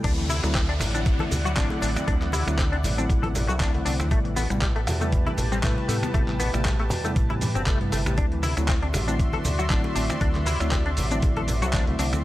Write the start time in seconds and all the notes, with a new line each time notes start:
0.04 D2 C3 D3 F#3 A3 C4 D4 E4 D5 F#5, kick, closed hi-hat, crash, downlifter, shaker
0.18 E3, closed hi-hat
0.29 C3 E4, open hi-hat, high conga, shaker
0.43 D2 D3 F#3 A3 C4 E4, finger snap, high bongo, shaker
0.54 C3 C4, kick, clap, closed hi-hat, shaker
0.69 C4 D4, closed hi-hat
0.79 A1 C3, finger snap, open hi-hat, high bongo, high conga, low conga, shaker
0.94 D3 F#3 A3 C4 D4 E4, closed hi-hat, shaker
1.05 C3, kick, closed hi-hat, shaker
1.19 E3 A4, closed hi-hat, high conga
1.31 D2 C3, open hi-hat, high bongo, low conga, shaker
1.45 F#3 F#4, closed hi-hat, shaker
1.56 A1 C3 D3 F#3 A3 C4 D4 E4, kick, clap, closed hi-hat, high conga, shaker
1.70 A3, closed hi-hat, high bongo
1.81 A1 C4 D4, open hi-hat, shaker
1.96 C4, finger snap, closed hi-hat, high conga, shaker
2.07 D2 C3 D3 F#3 A3 C4 D4 E4, kick, closed hi-hat, shaker
2.22 E3, clap, closed hi-hat, high bongo
2.32 C3 E4, open hi-hat, high conga, shaker
2.47 D2 D3 F#3 A3 C4 E4, finger snap, closed hi-hat, shaker
2.58 C3 C4, kick, clap, closed hi-hat, high bongo, shaker
2.72 C4 D4, closed hi-hat
2.84 A1 C3, open hi-hat, high conga, low conga, shaker
2.97 D3 F#3 A3 C4 D4 E4, closed hi-hat, shaker
3.10 C3, kick, closed hi-hat, high bongo, shaker
3.23 E3 A4, closed hi-hat, high conga
3.35 C3, open hi-hat, low conga, shaker
3.48 C2 F#3 F#4, closed hi-hat, high bongo, shaker
3.60 C3 D3 F#3 A3 C4 D4 E4, kick, clap, closed hi-hat, high conga, shaker
3.74 C2 A3, closed hi-hat
3.85 C2 C4 D4, open hi-hat, shaker
4.00 D2 C4, finger snap, high bongo, high conga, shaker
4.10 A1 B2 C3 G3 A3 B3 E4 G4 B4 A5, kick, closed hi-hat, shaker
4.25 E3, closed hi-hat
4.36 B2 B3, open hi-hat, high bongo, high conga, shaker
4.50 A1 C3 G3 A3 B3 E4, finger snap, shaker
4.62 B2 G3, kick, clap, closed hi-hat, shaker
4.76 A3 B3, closed hi-hat
4.87 E2 B2, finger snap, open hi-hat, high bongo, high conga, low conga, shaker
5.01 C3 G3 A3 B3 E4, shaker
5.12 B2, kick, closed hi-hat, shaker
5.27 E3 E4, closed hi-hat, high bongo, high conga
5.37 A1 B2, open hi-hat, low conga, shaker
5.52 G3 C4, closed hi-hat, shaker
5.63 A2 B2 C3 G3 A3 E4 B4, kick, clap, closed hi-hat, high conga, shaker
5.77 A3, closed hi-hat, high bongo
5.88 A2 A3 B3, open hi-hat, shaker
6.03 B3, finger snap, closed hi-hat, high conga, shaker
6.14 A1 B2 C3 G3 A3 B3 E4, kick, closed hi-hat, high bongo, shaker
6.28 E3, clap, closed hi-hat
6.40 B2 B3, open hi-hat, high conga, shaker
6.53 A1 C3 G3 A3 B3 E4, finger snap, shaker
6.65 B2 G3, kick, clap, closed hi-hat, high bongo, shaker
6.79 A3 B3, closed hi-hat
6.90 E2 B2, open hi-hat, high conga, low conga, shaker
7.04 C3 G3 A3 B3 E4, closed hi-hat, high bongo, shaker
7.16 A2 B2, kick, closed hi-hat, shaker
7.30 E3 E4, closed hi-hat, high conga
7.41 E3, open hi-hat, low conga, shaker
7.55 G1 B2 C4, closed hi-hat, high bongo, shaker
7.66 C3 G3 A3 E4 B4, kick, clap, closed hi-hat, high conga, shaker
7.81 G2 B3, closed hi-hat
7.92 G1 C3 A3, open hi-hat, high bongo, shaker
8.06 A1 C3, finger snap, high conga, shaker
8.17 D2 D3 F#3 A3 C4 D4 E4 F#4 D5 E5 C6, kick, closed hi-hat, shaker
8.32 E3, closed hi-hat
8.43 C3 E4, open hi-hat, high conga, shaker
8.57 D2 D3 F#3 A3 C4 E4, finger snap, high bongo, shaker
8.68 C3 C4, kick, clap, closed hi-hat, shaker
8.82 C4 D4, closed hi-hat
8.94 A1 C3, finger snap, open hi-hat, high bongo, high conga, low conga, shaker
9.08 D3 F#3 A3 C4 D4 E4, closed hi-hat, shaker
9.19 C3, kick, closed hi-hat, shaker
9.33 E3 A4, closed hi-hat, high conga
9.44 D2 C3, open hi-hat, high bongo, low conga, shaker
9.59 F#3 F#4, closed hi-hat, shaker
9.70 A1 D3 F#3 A3 C4 D4 E4, kick, clap, closed hi-hat, high conga, shaker
9.84 A3, closed hi-hat, high bongo
9.96 A1 C4 D4, open hi-hat, shaker
10.09 C4, finger snap, high conga, shaker
10.20 D2 C3 D3 F#3 A3 C4 D4 E4, kick, closed hi-hat, shaker
10.35 E3, clap, closed hi-hat, high bongo
10.46 C3 E4, open hi-hat, high conga, shaker
10.60 D2 D3 F#3 A3 C4 E4, finger snap, closed hi-hat, shaker
10.71 C3 C4, kick, clap, closed hi-hat, high bongo, shaker
10.86 C4 D4, closed hi-hat
10.97 A1 C3, open hi-hat, high conga, low conga, shaker
11.11 D3 F#3 A3 C4 D4 E4, closed hi-hat, shaker
11.22 A1 C3, kick, closed hi-hat, high bongo, shaker
11.37 E3 A4, closed hi-hat, high conga
11.48 C3, open hi-hat, low conga, shaker
11.62 C2 F#3 F#4, closed hi-hat, high bongo, shaker
11.73 D3 F#3 A3 C4 D4 E4, kick, clap, closed hi-hat, high conga, shaker
11.87 C2 A3, closed hi-hat
11.99 C2 C4 D4, open hi-hat, shaker
12.13 D2 C4, finger snap, high bongo, high conga, shaker